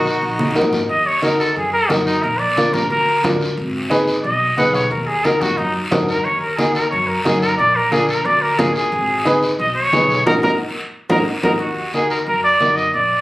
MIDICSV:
0, 0, Header, 1, 6, 480
1, 0, Start_track
1, 0, Key_signature, -6, "minor"
1, 0, Tempo, 334635
1, 1287, Time_signature, 4, 2, 24, 8
1, 18951, End_track
2, 0, Start_track
2, 0, Title_t, "Trumpet"
2, 0, Program_c, 0, 56
2, 0, Note_on_c, 0, 66, 93
2, 809, Note_off_c, 0, 66, 0
2, 1287, Note_on_c, 0, 75, 95
2, 1526, Note_on_c, 0, 73, 88
2, 1548, Note_off_c, 0, 75, 0
2, 1749, Note_off_c, 0, 73, 0
2, 1758, Note_on_c, 0, 70, 84
2, 2009, Note_on_c, 0, 69, 77
2, 2031, Note_off_c, 0, 70, 0
2, 2241, Note_off_c, 0, 69, 0
2, 2256, Note_on_c, 0, 68, 76
2, 2473, Note_off_c, 0, 68, 0
2, 2482, Note_on_c, 0, 70, 95
2, 2717, Note_off_c, 0, 70, 0
2, 2946, Note_on_c, 0, 63, 93
2, 3196, Note_on_c, 0, 70, 87
2, 3217, Note_off_c, 0, 63, 0
2, 3432, Note_on_c, 0, 74, 86
2, 3453, Note_off_c, 0, 70, 0
2, 3923, Note_on_c, 0, 70, 78
2, 3945, Note_off_c, 0, 74, 0
2, 4157, Note_off_c, 0, 70, 0
2, 4164, Note_on_c, 0, 70, 96
2, 4631, Note_off_c, 0, 70, 0
2, 6072, Note_on_c, 0, 75, 101
2, 6545, Note_off_c, 0, 75, 0
2, 6561, Note_on_c, 0, 78, 88
2, 6805, Note_on_c, 0, 73, 88
2, 6827, Note_off_c, 0, 78, 0
2, 7030, Note_off_c, 0, 73, 0
2, 7039, Note_on_c, 0, 70, 81
2, 7274, Note_on_c, 0, 68, 93
2, 7296, Note_off_c, 0, 70, 0
2, 7525, Note_on_c, 0, 70, 92
2, 7547, Note_off_c, 0, 68, 0
2, 7761, Note_on_c, 0, 66, 93
2, 7783, Note_off_c, 0, 70, 0
2, 7995, Note_on_c, 0, 63, 98
2, 8017, Note_off_c, 0, 66, 0
2, 8233, Note_off_c, 0, 63, 0
2, 8724, Note_on_c, 0, 70, 103
2, 8959, Note_on_c, 0, 73, 91
2, 8980, Note_off_c, 0, 70, 0
2, 9183, Note_off_c, 0, 73, 0
2, 9192, Note_on_c, 0, 70, 85
2, 9424, Note_on_c, 0, 68, 88
2, 9446, Note_off_c, 0, 70, 0
2, 9665, Note_off_c, 0, 68, 0
2, 9673, Note_on_c, 0, 70, 93
2, 9895, Note_off_c, 0, 70, 0
2, 9904, Note_on_c, 0, 73, 80
2, 10145, Note_on_c, 0, 70, 81
2, 10167, Note_off_c, 0, 73, 0
2, 10378, Note_off_c, 0, 70, 0
2, 10386, Note_on_c, 0, 68, 83
2, 10623, Note_off_c, 0, 68, 0
2, 10631, Note_on_c, 0, 70, 102
2, 10861, Note_off_c, 0, 70, 0
2, 10870, Note_on_c, 0, 74, 105
2, 11125, Note_on_c, 0, 70, 97
2, 11146, Note_off_c, 0, 74, 0
2, 11362, Note_on_c, 0, 68, 91
2, 11383, Note_off_c, 0, 70, 0
2, 11596, Note_off_c, 0, 68, 0
2, 11603, Note_on_c, 0, 70, 90
2, 11841, Note_on_c, 0, 74, 97
2, 11862, Note_off_c, 0, 70, 0
2, 12073, Note_on_c, 0, 70, 91
2, 12094, Note_off_c, 0, 74, 0
2, 12314, Note_on_c, 0, 68, 88
2, 12336, Note_off_c, 0, 70, 0
2, 12542, Note_off_c, 0, 68, 0
2, 12550, Note_on_c, 0, 68, 95
2, 13488, Note_off_c, 0, 68, 0
2, 13749, Note_on_c, 0, 75, 105
2, 13984, Note_off_c, 0, 75, 0
2, 13992, Note_on_c, 0, 73, 105
2, 14696, Note_off_c, 0, 73, 0
2, 14717, Note_on_c, 0, 70, 114
2, 14834, Note_off_c, 0, 70, 0
2, 14962, Note_on_c, 0, 70, 109
2, 15077, Note_off_c, 0, 70, 0
2, 15931, Note_on_c, 0, 70, 103
2, 16043, Note_off_c, 0, 70, 0
2, 16401, Note_on_c, 0, 70, 94
2, 16517, Note_off_c, 0, 70, 0
2, 16637, Note_on_c, 0, 66, 86
2, 17086, Note_off_c, 0, 66, 0
2, 17119, Note_on_c, 0, 68, 97
2, 17344, Note_off_c, 0, 68, 0
2, 17360, Note_on_c, 0, 70, 82
2, 17469, Note_off_c, 0, 70, 0
2, 17602, Note_on_c, 0, 70, 103
2, 17825, Note_off_c, 0, 70, 0
2, 17839, Note_on_c, 0, 74, 108
2, 18302, Note_on_c, 0, 75, 102
2, 18324, Note_off_c, 0, 74, 0
2, 18553, Note_off_c, 0, 75, 0
2, 18561, Note_on_c, 0, 74, 101
2, 18951, Note_off_c, 0, 74, 0
2, 18951, End_track
3, 0, Start_track
3, 0, Title_t, "Upright piano"
3, 0, Program_c, 1, 0
3, 0, Note_on_c, 1, 63, 75
3, 0, Note_on_c, 1, 66, 78
3, 0, Note_on_c, 1, 70, 96
3, 177, Note_off_c, 1, 63, 0
3, 180, Note_off_c, 1, 66, 0
3, 184, Note_off_c, 1, 70, 0
3, 790, Note_on_c, 1, 63, 78
3, 798, Note_on_c, 1, 66, 79
3, 804, Note_on_c, 1, 70, 99
3, 1134, Note_off_c, 1, 63, 0
3, 1138, Note_off_c, 1, 66, 0
3, 1141, Note_off_c, 1, 70, 0
3, 1751, Note_on_c, 1, 63, 73
3, 1759, Note_on_c, 1, 66, 63
3, 1761, Note_on_c, 1, 70, 80
3, 2094, Note_off_c, 1, 63, 0
3, 2098, Note_off_c, 1, 66, 0
3, 2100, Note_off_c, 1, 70, 0
3, 2710, Note_on_c, 1, 63, 75
3, 2717, Note_on_c, 1, 66, 58
3, 2726, Note_on_c, 1, 70, 77
3, 3054, Note_off_c, 1, 63, 0
3, 3058, Note_off_c, 1, 66, 0
3, 3062, Note_off_c, 1, 70, 0
3, 3688, Note_on_c, 1, 62, 69
3, 3694, Note_on_c, 1, 65, 70
3, 3696, Note_on_c, 1, 70, 72
3, 4023, Note_off_c, 1, 62, 0
3, 4026, Note_off_c, 1, 65, 0
3, 4027, Note_off_c, 1, 70, 0
3, 4646, Note_on_c, 1, 62, 68
3, 4653, Note_on_c, 1, 65, 67
3, 4656, Note_on_c, 1, 70, 85
3, 4982, Note_off_c, 1, 62, 0
3, 4986, Note_off_c, 1, 65, 0
3, 4987, Note_off_c, 1, 70, 0
3, 5594, Note_on_c, 1, 63, 92
3, 5602, Note_on_c, 1, 68, 85
3, 5607, Note_on_c, 1, 71, 94
3, 5936, Note_off_c, 1, 63, 0
3, 5940, Note_off_c, 1, 68, 0
3, 5943, Note_off_c, 1, 71, 0
3, 6561, Note_on_c, 1, 63, 69
3, 6569, Note_on_c, 1, 68, 62
3, 6575, Note_on_c, 1, 71, 84
3, 6899, Note_off_c, 1, 63, 0
3, 6904, Note_off_c, 1, 68, 0
3, 6907, Note_off_c, 1, 71, 0
3, 7525, Note_on_c, 1, 63, 69
3, 7533, Note_on_c, 1, 66, 65
3, 7539, Note_on_c, 1, 70, 78
3, 7862, Note_off_c, 1, 63, 0
3, 7865, Note_off_c, 1, 66, 0
3, 7869, Note_off_c, 1, 70, 0
3, 8481, Note_on_c, 1, 63, 89
3, 8484, Note_on_c, 1, 66, 75
3, 8493, Note_on_c, 1, 70, 88
3, 8820, Note_off_c, 1, 63, 0
3, 8821, Note_off_c, 1, 66, 0
3, 8825, Note_off_c, 1, 70, 0
3, 9443, Note_on_c, 1, 63, 72
3, 9449, Note_on_c, 1, 66, 59
3, 9456, Note_on_c, 1, 70, 72
3, 9780, Note_off_c, 1, 63, 0
3, 9784, Note_off_c, 1, 66, 0
3, 9787, Note_off_c, 1, 70, 0
3, 10400, Note_on_c, 1, 63, 75
3, 10403, Note_on_c, 1, 66, 70
3, 10412, Note_on_c, 1, 70, 80
3, 10739, Note_off_c, 1, 63, 0
3, 10740, Note_off_c, 1, 66, 0
3, 10745, Note_off_c, 1, 70, 0
3, 11351, Note_on_c, 1, 62, 78
3, 11359, Note_on_c, 1, 65, 63
3, 11363, Note_on_c, 1, 70, 78
3, 11694, Note_off_c, 1, 62, 0
3, 11698, Note_off_c, 1, 65, 0
3, 11700, Note_off_c, 1, 70, 0
3, 12311, Note_on_c, 1, 62, 72
3, 12314, Note_on_c, 1, 65, 72
3, 12317, Note_on_c, 1, 70, 78
3, 12654, Note_off_c, 1, 62, 0
3, 12656, Note_off_c, 1, 65, 0
3, 12657, Note_off_c, 1, 70, 0
3, 13271, Note_on_c, 1, 63, 97
3, 13282, Note_on_c, 1, 68, 83
3, 13287, Note_on_c, 1, 71, 100
3, 13613, Note_off_c, 1, 63, 0
3, 13619, Note_off_c, 1, 68, 0
3, 13621, Note_off_c, 1, 71, 0
3, 14244, Note_on_c, 1, 63, 76
3, 14251, Note_on_c, 1, 68, 70
3, 14259, Note_on_c, 1, 71, 78
3, 14579, Note_off_c, 1, 63, 0
3, 14583, Note_off_c, 1, 68, 0
3, 14587, Note_off_c, 1, 71, 0
3, 14729, Note_on_c, 1, 63, 102
3, 14731, Note_on_c, 1, 70, 104
3, 14734, Note_on_c, 1, 66, 105
3, 14880, Note_off_c, 1, 63, 0
3, 14881, Note_off_c, 1, 70, 0
3, 14883, Note_off_c, 1, 66, 0
3, 14975, Note_on_c, 1, 70, 94
3, 14979, Note_on_c, 1, 66, 100
3, 14980, Note_on_c, 1, 63, 92
3, 15123, Note_off_c, 1, 70, 0
3, 15126, Note_off_c, 1, 63, 0
3, 15126, Note_off_c, 1, 66, 0
3, 15924, Note_on_c, 1, 70, 94
3, 15926, Note_on_c, 1, 63, 100
3, 15933, Note_on_c, 1, 66, 94
3, 16077, Note_off_c, 1, 70, 0
3, 16078, Note_off_c, 1, 63, 0
3, 16082, Note_off_c, 1, 66, 0
3, 16414, Note_on_c, 1, 66, 96
3, 16416, Note_on_c, 1, 70, 93
3, 16418, Note_on_c, 1, 63, 97
3, 16563, Note_off_c, 1, 66, 0
3, 16564, Note_off_c, 1, 70, 0
3, 16566, Note_off_c, 1, 63, 0
3, 17131, Note_on_c, 1, 63, 67
3, 17141, Note_on_c, 1, 66, 61
3, 17144, Note_on_c, 1, 70, 79
3, 17463, Note_off_c, 1, 63, 0
3, 17468, Note_off_c, 1, 66, 0
3, 17469, Note_off_c, 1, 70, 0
3, 18081, Note_on_c, 1, 63, 64
3, 18091, Note_on_c, 1, 66, 60
3, 18098, Note_on_c, 1, 70, 76
3, 18418, Note_off_c, 1, 63, 0
3, 18423, Note_off_c, 1, 66, 0
3, 18426, Note_off_c, 1, 70, 0
3, 18951, End_track
4, 0, Start_track
4, 0, Title_t, "Accordion"
4, 0, Program_c, 2, 21
4, 0, Note_on_c, 2, 63, 77
4, 808, Note_off_c, 2, 63, 0
4, 18951, End_track
5, 0, Start_track
5, 0, Title_t, "Upright bass"
5, 0, Program_c, 3, 32
5, 0, Note_on_c, 3, 34, 100
5, 223, Note_off_c, 3, 34, 0
5, 318, Note_on_c, 3, 34, 99
5, 705, Note_off_c, 3, 34, 0
5, 808, Note_on_c, 3, 42, 96
5, 1191, Note_off_c, 3, 42, 0
5, 1281, Note_on_c, 3, 39, 90
5, 2051, Note_off_c, 3, 39, 0
5, 2238, Note_on_c, 3, 42, 86
5, 2625, Note_off_c, 3, 42, 0
5, 2724, Note_on_c, 3, 42, 101
5, 3109, Note_off_c, 3, 42, 0
5, 3210, Note_on_c, 3, 34, 99
5, 3976, Note_off_c, 3, 34, 0
5, 4163, Note_on_c, 3, 38, 104
5, 4548, Note_off_c, 3, 38, 0
5, 4639, Note_on_c, 3, 38, 110
5, 5026, Note_off_c, 3, 38, 0
5, 5126, Note_on_c, 3, 32, 97
5, 5894, Note_off_c, 3, 32, 0
5, 6087, Note_on_c, 3, 35, 104
5, 6470, Note_off_c, 3, 35, 0
5, 6565, Note_on_c, 3, 35, 106
5, 6949, Note_off_c, 3, 35, 0
5, 7042, Note_on_c, 3, 39, 101
5, 7812, Note_off_c, 3, 39, 0
5, 7999, Note_on_c, 3, 42, 91
5, 8386, Note_off_c, 3, 42, 0
5, 8481, Note_on_c, 3, 42, 108
5, 8867, Note_off_c, 3, 42, 0
5, 8969, Note_on_c, 3, 39, 89
5, 9736, Note_off_c, 3, 39, 0
5, 9933, Note_on_c, 3, 42, 94
5, 10314, Note_off_c, 3, 42, 0
5, 10413, Note_on_c, 3, 42, 109
5, 10794, Note_off_c, 3, 42, 0
5, 10890, Note_on_c, 3, 34, 102
5, 11656, Note_off_c, 3, 34, 0
5, 11835, Note_on_c, 3, 38, 104
5, 12223, Note_off_c, 3, 38, 0
5, 12324, Note_on_c, 3, 38, 108
5, 12708, Note_off_c, 3, 38, 0
5, 12797, Note_on_c, 3, 32, 105
5, 13568, Note_off_c, 3, 32, 0
5, 13760, Note_on_c, 3, 35, 102
5, 14145, Note_off_c, 3, 35, 0
5, 14241, Note_on_c, 3, 35, 107
5, 14626, Note_off_c, 3, 35, 0
5, 14724, Note_on_c, 3, 39, 111
5, 14902, Note_off_c, 3, 39, 0
5, 14964, Note_on_c, 3, 39, 88
5, 15142, Note_off_c, 3, 39, 0
5, 15916, Note_on_c, 3, 39, 108
5, 16097, Note_off_c, 3, 39, 0
5, 16393, Note_on_c, 3, 39, 104
5, 16576, Note_off_c, 3, 39, 0
5, 16635, Note_on_c, 3, 39, 93
5, 17406, Note_off_c, 3, 39, 0
5, 17596, Note_on_c, 3, 42, 87
5, 17983, Note_off_c, 3, 42, 0
5, 18085, Note_on_c, 3, 42, 97
5, 18469, Note_off_c, 3, 42, 0
5, 18557, Note_on_c, 3, 34, 93
5, 18951, Note_off_c, 3, 34, 0
5, 18951, End_track
6, 0, Start_track
6, 0, Title_t, "Drums"
6, 81, Note_on_c, 9, 73, 78
6, 224, Note_off_c, 9, 73, 0
6, 318, Note_on_c, 9, 74, 62
6, 323, Note_on_c, 9, 63, 33
6, 462, Note_off_c, 9, 74, 0
6, 466, Note_off_c, 9, 63, 0
6, 564, Note_on_c, 9, 63, 105
6, 707, Note_off_c, 9, 63, 0
6, 728, Note_on_c, 9, 63, 78
6, 799, Note_on_c, 9, 73, 75
6, 872, Note_off_c, 9, 63, 0
6, 880, Note_on_c, 9, 64, 79
6, 942, Note_off_c, 9, 73, 0
6, 1023, Note_off_c, 9, 64, 0
6, 1041, Note_on_c, 9, 73, 75
6, 1042, Note_on_c, 9, 64, 73
6, 1184, Note_off_c, 9, 73, 0
6, 1186, Note_off_c, 9, 64, 0
6, 1280, Note_on_c, 9, 63, 39
6, 1282, Note_on_c, 9, 74, 72
6, 1424, Note_off_c, 9, 63, 0
6, 1426, Note_off_c, 9, 74, 0
6, 1757, Note_on_c, 9, 63, 78
6, 1765, Note_on_c, 9, 73, 75
6, 1901, Note_off_c, 9, 63, 0
6, 1909, Note_off_c, 9, 73, 0
6, 2010, Note_on_c, 9, 73, 77
6, 2153, Note_off_c, 9, 73, 0
6, 2245, Note_on_c, 9, 63, 37
6, 2245, Note_on_c, 9, 74, 68
6, 2388, Note_off_c, 9, 63, 0
6, 2389, Note_off_c, 9, 74, 0
6, 2723, Note_on_c, 9, 63, 86
6, 2730, Note_on_c, 9, 73, 75
6, 2867, Note_off_c, 9, 63, 0
6, 2874, Note_off_c, 9, 73, 0
6, 2969, Note_on_c, 9, 73, 73
6, 3113, Note_off_c, 9, 73, 0
6, 3208, Note_on_c, 9, 63, 39
6, 3209, Note_on_c, 9, 74, 71
6, 3351, Note_off_c, 9, 63, 0
6, 3352, Note_off_c, 9, 74, 0
6, 3689, Note_on_c, 9, 73, 74
6, 3694, Note_on_c, 9, 63, 81
6, 3833, Note_off_c, 9, 73, 0
6, 3837, Note_off_c, 9, 63, 0
6, 3924, Note_on_c, 9, 64, 73
6, 3926, Note_on_c, 9, 73, 77
6, 4068, Note_off_c, 9, 64, 0
6, 4070, Note_off_c, 9, 73, 0
6, 4165, Note_on_c, 9, 74, 69
6, 4168, Note_on_c, 9, 63, 33
6, 4309, Note_off_c, 9, 74, 0
6, 4312, Note_off_c, 9, 63, 0
6, 4647, Note_on_c, 9, 73, 70
6, 4652, Note_on_c, 9, 63, 77
6, 4652, Note_on_c, 9, 64, 81
6, 4791, Note_off_c, 9, 73, 0
6, 4795, Note_off_c, 9, 63, 0
6, 4795, Note_off_c, 9, 64, 0
6, 4889, Note_on_c, 9, 73, 70
6, 5033, Note_off_c, 9, 73, 0
6, 5124, Note_on_c, 9, 63, 36
6, 5129, Note_on_c, 9, 74, 83
6, 5268, Note_off_c, 9, 63, 0
6, 5272, Note_off_c, 9, 74, 0
6, 5607, Note_on_c, 9, 63, 77
6, 5609, Note_on_c, 9, 73, 73
6, 5751, Note_off_c, 9, 63, 0
6, 5752, Note_off_c, 9, 73, 0
6, 5846, Note_on_c, 9, 73, 77
6, 5989, Note_off_c, 9, 73, 0
6, 6084, Note_on_c, 9, 74, 60
6, 6089, Note_on_c, 9, 63, 36
6, 6228, Note_off_c, 9, 74, 0
6, 6232, Note_off_c, 9, 63, 0
6, 6567, Note_on_c, 9, 63, 78
6, 6573, Note_on_c, 9, 73, 76
6, 6711, Note_off_c, 9, 63, 0
6, 6716, Note_off_c, 9, 73, 0
6, 6807, Note_on_c, 9, 73, 79
6, 6950, Note_off_c, 9, 73, 0
6, 7045, Note_on_c, 9, 74, 75
6, 7054, Note_on_c, 9, 63, 34
6, 7188, Note_off_c, 9, 74, 0
6, 7198, Note_off_c, 9, 63, 0
6, 7524, Note_on_c, 9, 73, 68
6, 7530, Note_on_c, 9, 63, 85
6, 7667, Note_off_c, 9, 73, 0
6, 7674, Note_off_c, 9, 63, 0
6, 7760, Note_on_c, 9, 73, 82
6, 7767, Note_on_c, 9, 64, 75
6, 7904, Note_off_c, 9, 73, 0
6, 7911, Note_off_c, 9, 64, 0
6, 8005, Note_on_c, 9, 74, 71
6, 8008, Note_on_c, 9, 63, 33
6, 8148, Note_off_c, 9, 74, 0
6, 8152, Note_off_c, 9, 63, 0
6, 8485, Note_on_c, 9, 73, 77
6, 8490, Note_on_c, 9, 63, 82
6, 8490, Note_on_c, 9, 64, 94
6, 8628, Note_off_c, 9, 73, 0
6, 8633, Note_off_c, 9, 63, 0
6, 8633, Note_off_c, 9, 64, 0
6, 8728, Note_on_c, 9, 73, 72
6, 8871, Note_off_c, 9, 73, 0
6, 8968, Note_on_c, 9, 63, 40
6, 8969, Note_on_c, 9, 74, 72
6, 9111, Note_off_c, 9, 63, 0
6, 9112, Note_off_c, 9, 74, 0
6, 9445, Note_on_c, 9, 73, 79
6, 9447, Note_on_c, 9, 63, 81
6, 9589, Note_off_c, 9, 73, 0
6, 9590, Note_off_c, 9, 63, 0
6, 9684, Note_on_c, 9, 73, 75
6, 9827, Note_off_c, 9, 73, 0
6, 9931, Note_on_c, 9, 74, 70
6, 9932, Note_on_c, 9, 63, 35
6, 10074, Note_off_c, 9, 74, 0
6, 10076, Note_off_c, 9, 63, 0
6, 10405, Note_on_c, 9, 63, 83
6, 10410, Note_on_c, 9, 73, 80
6, 10549, Note_off_c, 9, 63, 0
6, 10553, Note_off_c, 9, 73, 0
6, 10651, Note_on_c, 9, 73, 78
6, 10794, Note_off_c, 9, 73, 0
6, 10884, Note_on_c, 9, 74, 74
6, 10886, Note_on_c, 9, 63, 40
6, 11028, Note_off_c, 9, 74, 0
6, 11030, Note_off_c, 9, 63, 0
6, 11360, Note_on_c, 9, 63, 77
6, 11364, Note_on_c, 9, 73, 75
6, 11503, Note_off_c, 9, 63, 0
6, 11508, Note_off_c, 9, 73, 0
6, 11599, Note_on_c, 9, 73, 77
6, 11742, Note_off_c, 9, 73, 0
6, 11842, Note_on_c, 9, 74, 62
6, 11845, Note_on_c, 9, 63, 38
6, 11985, Note_off_c, 9, 74, 0
6, 11988, Note_off_c, 9, 63, 0
6, 12316, Note_on_c, 9, 73, 75
6, 12321, Note_on_c, 9, 63, 86
6, 12321, Note_on_c, 9, 64, 85
6, 12459, Note_off_c, 9, 73, 0
6, 12464, Note_off_c, 9, 63, 0
6, 12464, Note_off_c, 9, 64, 0
6, 12558, Note_on_c, 9, 73, 74
6, 12701, Note_off_c, 9, 73, 0
6, 12794, Note_on_c, 9, 74, 75
6, 12804, Note_on_c, 9, 63, 39
6, 12937, Note_off_c, 9, 74, 0
6, 12947, Note_off_c, 9, 63, 0
6, 13277, Note_on_c, 9, 73, 73
6, 13285, Note_on_c, 9, 63, 81
6, 13420, Note_off_c, 9, 73, 0
6, 13428, Note_off_c, 9, 63, 0
6, 13521, Note_on_c, 9, 73, 80
6, 13665, Note_off_c, 9, 73, 0
6, 13762, Note_on_c, 9, 74, 72
6, 13766, Note_on_c, 9, 63, 33
6, 13905, Note_off_c, 9, 74, 0
6, 13910, Note_off_c, 9, 63, 0
6, 14240, Note_on_c, 9, 63, 92
6, 14242, Note_on_c, 9, 73, 74
6, 14383, Note_off_c, 9, 63, 0
6, 14385, Note_off_c, 9, 73, 0
6, 14488, Note_on_c, 9, 73, 71
6, 14631, Note_off_c, 9, 73, 0
6, 14723, Note_on_c, 9, 74, 111
6, 14726, Note_on_c, 9, 64, 107
6, 14866, Note_off_c, 9, 74, 0
6, 14869, Note_off_c, 9, 64, 0
6, 14956, Note_on_c, 9, 74, 90
6, 14961, Note_on_c, 9, 64, 104
6, 15099, Note_off_c, 9, 74, 0
6, 15105, Note_off_c, 9, 64, 0
6, 15916, Note_on_c, 9, 64, 120
6, 15917, Note_on_c, 9, 74, 99
6, 16059, Note_off_c, 9, 64, 0
6, 16061, Note_off_c, 9, 74, 0
6, 16401, Note_on_c, 9, 64, 98
6, 16402, Note_on_c, 9, 74, 115
6, 16544, Note_off_c, 9, 64, 0
6, 16545, Note_off_c, 9, 74, 0
6, 16642, Note_on_c, 9, 63, 36
6, 16643, Note_on_c, 9, 74, 72
6, 16786, Note_off_c, 9, 63, 0
6, 16786, Note_off_c, 9, 74, 0
6, 17119, Note_on_c, 9, 73, 68
6, 17127, Note_on_c, 9, 63, 72
6, 17262, Note_off_c, 9, 73, 0
6, 17271, Note_off_c, 9, 63, 0
6, 17361, Note_on_c, 9, 73, 80
6, 17504, Note_off_c, 9, 73, 0
6, 17594, Note_on_c, 9, 74, 62
6, 17614, Note_on_c, 9, 63, 36
6, 17738, Note_off_c, 9, 74, 0
6, 17758, Note_off_c, 9, 63, 0
6, 18079, Note_on_c, 9, 73, 68
6, 18081, Note_on_c, 9, 63, 82
6, 18222, Note_off_c, 9, 73, 0
6, 18224, Note_off_c, 9, 63, 0
6, 18319, Note_on_c, 9, 73, 62
6, 18462, Note_off_c, 9, 73, 0
6, 18558, Note_on_c, 9, 74, 70
6, 18566, Note_on_c, 9, 63, 35
6, 18702, Note_off_c, 9, 74, 0
6, 18710, Note_off_c, 9, 63, 0
6, 18951, End_track
0, 0, End_of_file